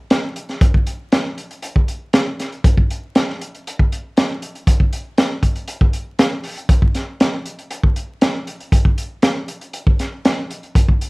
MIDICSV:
0, 0, Header, 1, 2, 480
1, 0, Start_track
1, 0, Tempo, 506757
1, 577, Time_signature, 4, 2, 24, 8
1, 10512, End_track
2, 0, Start_track
2, 0, Title_t, "Drums"
2, 98, Note_on_c, 9, 42, 89
2, 104, Note_on_c, 9, 38, 121
2, 193, Note_off_c, 9, 42, 0
2, 199, Note_off_c, 9, 38, 0
2, 340, Note_on_c, 9, 42, 62
2, 435, Note_off_c, 9, 42, 0
2, 462, Note_on_c, 9, 42, 33
2, 467, Note_on_c, 9, 38, 30
2, 556, Note_off_c, 9, 42, 0
2, 562, Note_off_c, 9, 38, 0
2, 579, Note_on_c, 9, 36, 117
2, 579, Note_on_c, 9, 42, 80
2, 673, Note_off_c, 9, 36, 0
2, 674, Note_off_c, 9, 42, 0
2, 703, Note_on_c, 9, 36, 83
2, 798, Note_off_c, 9, 36, 0
2, 820, Note_on_c, 9, 42, 60
2, 914, Note_off_c, 9, 42, 0
2, 1061, Note_on_c, 9, 42, 80
2, 1066, Note_on_c, 9, 38, 104
2, 1155, Note_off_c, 9, 42, 0
2, 1161, Note_off_c, 9, 38, 0
2, 1305, Note_on_c, 9, 42, 55
2, 1400, Note_off_c, 9, 42, 0
2, 1428, Note_on_c, 9, 42, 37
2, 1522, Note_off_c, 9, 42, 0
2, 1539, Note_on_c, 9, 42, 78
2, 1633, Note_off_c, 9, 42, 0
2, 1665, Note_on_c, 9, 36, 80
2, 1760, Note_off_c, 9, 36, 0
2, 1782, Note_on_c, 9, 42, 52
2, 1877, Note_off_c, 9, 42, 0
2, 2019, Note_on_c, 9, 42, 83
2, 2025, Note_on_c, 9, 38, 108
2, 2114, Note_off_c, 9, 42, 0
2, 2120, Note_off_c, 9, 38, 0
2, 2268, Note_on_c, 9, 42, 60
2, 2274, Note_on_c, 9, 38, 34
2, 2363, Note_off_c, 9, 42, 0
2, 2369, Note_off_c, 9, 38, 0
2, 2389, Note_on_c, 9, 42, 33
2, 2484, Note_off_c, 9, 42, 0
2, 2503, Note_on_c, 9, 36, 119
2, 2504, Note_on_c, 9, 42, 85
2, 2598, Note_off_c, 9, 36, 0
2, 2598, Note_off_c, 9, 42, 0
2, 2629, Note_on_c, 9, 36, 79
2, 2723, Note_off_c, 9, 36, 0
2, 2752, Note_on_c, 9, 42, 59
2, 2847, Note_off_c, 9, 42, 0
2, 2987, Note_on_c, 9, 42, 83
2, 2992, Note_on_c, 9, 38, 105
2, 3081, Note_off_c, 9, 42, 0
2, 3087, Note_off_c, 9, 38, 0
2, 3120, Note_on_c, 9, 38, 35
2, 3215, Note_off_c, 9, 38, 0
2, 3234, Note_on_c, 9, 42, 62
2, 3329, Note_off_c, 9, 42, 0
2, 3359, Note_on_c, 9, 42, 38
2, 3454, Note_off_c, 9, 42, 0
2, 3479, Note_on_c, 9, 42, 81
2, 3574, Note_off_c, 9, 42, 0
2, 3593, Note_on_c, 9, 36, 78
2, 3688, Note_off_c, 9, 36, 0
2, 3716, Note_on_c, 9, 42, 60
2, 3810, Note_off_c, 9, 42, 0
2, 3950, Note_on_c, 9, 42, 86
2, 3956, Note_on_c, 9, 38, 112
2, 4045, Note_off_c, 9, 42, 0
2, 4051, Note_off_c, 9, 38, 0
2, 4189, Note_on_c, 9, 42, 63
2, 4284, Note_off_c, 9, 42, 0
2, 4313, Note_on_c, 9, 42, 33
2, 4408, Note_off_c, 9, 42, 0
2, 4425, Note_on_c, 9, 36, 103
2, 4425, Note_on_c, 9, 42, 91
2, 4519, Note_off_c, 9, 36, 0
2, 4519, Note_off_c, 9, 42, 0
2, 4547, Note_on_c, 9, 36, 76
2, 4642, Note_off_c, 9, 36, 0
2, 4667, Note_on_c, 9, 42, 63
2, 4762, Note_off_c, 9, 42, 0
2, 4904, Note_on_c, 9, 42, 80
2, 4909, Note_on_c, 9, 38, 108
2, 4998, Note_off_c, 9, 42, 0
2, 5004, Note_off_c, 9, 38, 0
2, 5140, Note_on_c, 9, 36, 64
2, 5141, Note_on_c, 9, 42, 62
2, 5235, Note_off_c, 9, 36, 0
2, 5236, Note_off_c, 9, 42, 0
2, 5262, Note_on_c, 9, 42, 37
2, 5357, Note_off_c, 9, 42, 0
2, 5376, Note_on_c, 9, 42, 79
2, 5470, Note_off_c, 9, 42, 0
2, 5503, Note_on_c, 9, 36, 88
2, 5597, Note_off_c, 9, 36, 0
2, 5619, Note_on_c, 9, 42, 52
2, 5713, Note_off_c, 9, 42, 0
2, 5860, Note_on_c, 9, 42, 87
2, 5866, Note_on_c, 9, 38, 112
2, 5955, Note_off_c, 9, 42, 0
2, 5961, Note_off_c, 9, 38, 0
2, 6096, Note_on_c, 9, 46, 75
2, 6191, Note_off_c, 9, 46, 0
2, 6224, Note_on_c, 9, 42, 32
2, 6319, Note_off_c, 9, 42, 0
2, 6337, Note_on_c, 9, 36, 104
2, 6338, Note_on_c, 9, 42, 81
2, 6432, Note_off_c, 9, 36, 0
2, 6433, Note_off_c, 9, 42, 0
2, 6462, Note_on_c, 9, 36, 80
2, 6556, Note_off_c, 9, 36, 0
2, 6580, Note_on_c, 9, 42, 53
2, 6585, Note_on_c, 9, 38, 31
2, 6674, Note_off_c, 9, 42, 0
2, 6680, Note_off_c, 9, 38, 0
2, 6822, Note_on_c, 9, 42, 84
2, 6828, Note_on_c, 9, 38, 104
2, 6917, Note_off_c, 9, 42, 0
2, 6923, Note_off_c, 9, 38, 0
2, 7062, Note_on_c, 9, 42, 60
2, 7156, Note_off_c, 9, 42, 0
2, 7186, Note_on_c, 9, 42, 37
2, 7280, Note_off_c, 9, 42, 0
2, 7298, Note_on_c, 9, 42, 86
2, 7393, Note_off_c, 9, 42, 0
2, 7421, Note_on_c, 9, 36, 77
2, 7515, Note_off_c, 9, 36, 0
2, 7540, Note_on_c, 9, 42, 60
2, 7635, Note_off_c, 9, 42, 0
2, 7780, Note_on_c, 9, 42, 86
2, 7786, Note_on_c, 9, 38, 121
2, 7875, Note_off_c, 9, 42, 0
2, 7881, Note_off_c, 9, 38, 0
2, 8024, Note_on_c, 9, 42, 58
2, 8119, Note_off_c, 9, 42, 0
2, 8150, Note_on_c, 9, 42, 34
2, 8245, Note_off_c, 9, 42, 0
2, 8261, Note_on_c, 9, 36, 107
2, 8263, Note_on_c, 9, 42, 87
2, 8356, Note_off_c, 9, 36, 0
2, 8358, Note_off_c, 9, 42, 0
2, 8384, Note_on_c, 9, 36, 83
2, 8478, Note_off_c, 9, 36, 0
2, 8504, Note_on_c, 9, 42, 59
2, 8599, Note_off_c, 9, 42, 0
2, 8736, Note_on_c, 9, 42, 83
2, 8742, Note_on_c, 9, 38, 109
2, 8831, Note_off_c, 9, 42, 0
2, 8837, Note_off_c, 9, 38, 0
2, 8980, Note_on_c, 9, 42, 60
2, 9074, Note_off_c, 9, 42, 0
2, 9105, Note_on_c, 9, 42, 42
2, 9200, Note_off_c, 9, 42, 0
2, 9219, Note_on_c, 9, 42, 73
2, 9314, Note_off_c, 9, 42, 0
2, 9345, Note_on_c, 9, 36, 86
2, 9440, Note_off_c, 9, 36, 0
2, 9465, Note_on_c, 9, 42, 55
2, 9470, Note_on_c, 9, 38, 34
2, 9560, Note_off_c, 9, 42, 0
2, 9565, Note_off_c, 9, 38, 0
2, 9708, Note_on_c, 9, 42, 85
2, 9713, Note_on_c, 9, 38, 118
2, 9802, Note_off_c, 9, 42, 0
2, 9808, Note_off_c, 9, 38, 0
2, 9951, Note_on_c, 9, 42, 57
2, 10046, Note_off_c, 9, 42, 0
2, 10069, Note_on_c, 9, 42, 29
2, 10164, Note_off_c, 9, 42, 0
2, 10185, Note_on_c, 9, 36, 111
2, 10190, Note_on_c, 9, 42, 80
2, 10280, Note_off_c, 9, 36, 0
2, 10285, Note_off_c, 9, 42, 0
2, 10310, Note_on_c, 9, 36, 79
2, 10405, Note_off_c, 9, 36, 0
2, 10431, Note_on_c, 9, 42, 62
2, 10512, Note_off_c, 9, 42, 0
2, 10512, End_track
0, 0, End_of_file